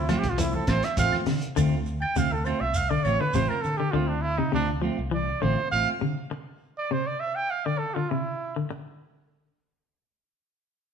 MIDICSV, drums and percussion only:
0, 0, Header, 1, 3, 480
1, 0, Start_track
1, 0, Key_signature, -1, "minor"
1, 0, Tempo, 595238
1, 1259, Time_signature, 4, 2, 24, 8
1, 8821, End_track
2, 0, Start_track
2, 0, Title_t, "Shekere"
2, 74, Note_on_c, 9, 82, 26
2, 155, Note_off_c, 9, 82, 0
2, 313, Note_on_c, 9, 82, 85
2, 394, Note_off_c, 9, 82, 0
2, 557, Note_on_c, 9, 82, 26
2, 637, Note_off_c, 9, 82, 0
2, 784, Note_on_c, 9, 82, 76
2, 864, Note_off_c, 9, 82, 0
2, 1027, Note_on_c, 9, 82, 30
2, 1108, Note_off_c, 9, 82, 0
2, 1266, Note_on_c, 9, 82, 86
2, 1347, Note_off_c, 9, 82, 0
2, 1500, Note_on_c, 9, 82, 27
2, 1581, Note_off_c, 9, 82, 0
2, 1741, Note_on_c, 9, 82, 83
2, 1822, Note_off_c, 9, 82, 0
2, 1976, Note_on_c, 9, 82, 25
2, 2057, Note_off_c, 9, 82, 0
2, 2212, Note_on_c, 9, 82, 84
2, 2292, Note_off_c, 9, 82, 0
2, 2459, Note_on_c, 9, 82, 26
2, 2540, Note_off_c, 9, 82, 0
2, 2689, Note_on_c, 9, 82, 80
2, 2770, Note_off_c, 9, 82, 0
2, 2934, Note_on_c, 9, 82, 28
2, 3015, Note_off_c, 9, 82, 0
2, 8821, End_track
3, 0, Start_track
3, 0, Title_t, "Drums"
3, 71, Note_on_c, 9, 42, 53
3, 73, Note_on_c, 9, 63, 73
3, 73, Note_on_c, 9, 64, 80
3, 73, Note_on_c, 9, 75, 66
3, 76, Note_on_c, 9, 38, 27
3, 151, Note_off_c, 9, 42, 0
3, 153, Note_off_c, 9, 63, 0
3, 153, Note_off_c, 9, 64, 0
3, 153, Note_off_c, 9, 75, 0
3, 156, Note_off_c, 9, 38, 0
3, 190, Note_on_c, 9, 42, 48
3, 191, Note_on_c, 9, 36, 70
3, 195, Note_on_c, 9, 64, 65
3, 270, Note_off_c, 9, 42, 0
3, 272, Note_off_c, 9, 36, 0
3, 275, Note_off_c, 9, 64, 0
3, 306, Note_on_c, 9, 42, 71
3, 311, Note_on_c, 9, 63, 34
3, 387, Note_off_c, 9, 42, 0
3, 392, Note_off_c, 9, 63, 0
3, 430, Note_on_c, 9, 63, 72
3, 511, Note_off_c, 9, 63, 0
3, 542, Note_on_c, 9, 42, 55
3, 546, Note_on_c, 9, 36, 71
3, 547, Note_on_c, 9, 38, 70
3, 548, Note_on_c, 9, 63, 85
3, 553, Note_on_c, 9, 75, 67
3, 623, Note_off_c, 9, 42, 0
3, 626, Note_off_c, 9, 36, 0
3, 627, Note_off_c, 9, 38, 0
3, 629, Note_off_c, 9, 63, 0
3, 634, Note_off_c, 9, 75, 0
3, 668, Note_on_c, 9, 42, 56
3, 673, Note_on_c, 9, 38, 25
3, 748, Note_off_c, 9, 42, 0
3, 753, Note_off_c, 9, 38, 0
3, 783, Note_on_c, 9, 42, 72
3, 784, Note_on_c, 9, 36, 64
3, 789, Note_on_c, 9, 63, 81
3, 863, Note_off_c, 9, 42, 0
3, 864, Note_off_c, 9, 36, 0
3, 869, Note_off_c, 9, 63, 0
3, 903, Note_on_c, 9, 63, 67
3, 907, Note_on_c, 9, 75, 59
3, 909, Note_on_c, 9, 38, 24
3, 984, Note_off_c, 9, 63, 0
3, 987, Note_off_c, 9, 75, 0
3, 990, Note_off_c, 9, 38, 0
3, 1016, Note_on_c, 9, 46, 58
3, 1021, Note_on_c, 9, 38, 28
3, 1097, Note_off_c, 9, 46, 0
3, 1102, Note_off_c, 9, 38, 0
3, 1141, Note_on_c, 9, 42, 53
3, 1222, Note_off_c, 9, 42, 0
3, 1269, Note_on_c, 9, 75, 62
3, 1350, Note_off_c, 9, 75, 0
3, 1628, Note_on_c, 9, 75, 62
3, 1709, Note_off_c, 9, 75, 0
3, 1988, Note_on_c, 9, 75, 61
3, 2069, Note_off_c, 9, 75, 0
3, 2458, Note_on_c, 9, 75, 59
3, 2538, Note_off_c, 9, 75, 0
3, 2825, Note_on_c, 9, 75, 58
3, 2905, Note_off_c, 9, 75, 0
3, 8821, End_track
0, 0, End_of_file